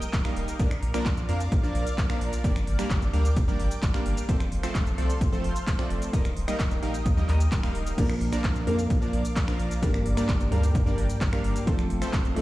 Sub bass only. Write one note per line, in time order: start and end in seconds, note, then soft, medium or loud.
0.13 0.23 D#1 medium
0.36 0.46 D#1 medium
0.60 0.79 A#1 loud
0.82 0.92 A#1 medium
1.06 1.25 A#1 loud
1.29 1.48 F2 medium
1.52 1.71 A#1 loud
1.75 1.84 A#1 loud
1.98 2.08 A#1 medium
2.21 2.31 A#1 medium
2.44 2.63 G1 loud
2.67 2.77 G1 medium
2.90 3.09 G1 loud
3.13 3.32 D2 medium
3.37 3.56 G1 loud
3.59 3.69 G1 loud
3.83 3.92 G1 medium
4.06 4.15 G1 medium
4.29 4.48 F1 loud
4.52 4.61 F1 medium
4.75 4.94 F1 loud
4.98 5.17 C2 medium
5.21 5.40 F1 loud
5.44 5.54 F1 loud
5.67 5.77 F1 medium
5.90 6.00 F1 medium
6.13 6.33 D#1 loud
6.36 6.46 D#1 medium
6.60 6.79 D#1 loud
6.83 7.02 A#1 medium
7.06 7.25 D#2 loud
7.29 7.48 D#2 medium
7.52 7.71 D#1 medium
7.75 7.94 D#1 loud
7.98 8.17 A#1 loud
8.21 8.31 A#1 medium
8.44 8.63 A#1 loud
8.67 8.86 F2 medium
8.90 9.09 A#1 loud
9.13 9.23 A#1 loud
9.36 9.46 A#1 medium
9.59 9.69 A#1 medium
9.83 10.02 G1 loud
10.06 10.15 G1 medium
10.29 10.48 G1 loud
10.52 10.71 D2 medium
10.75 10.94 G1 loud
10.98 11.08 G1 loud
11.21 11.31 G1 medium
11.44 11.54 G1 medium
11.67 11.86 F1 loud
11.90 12.00 F1 medium
12.13 12.33 F1 loud
12.36 12.42 C2 medium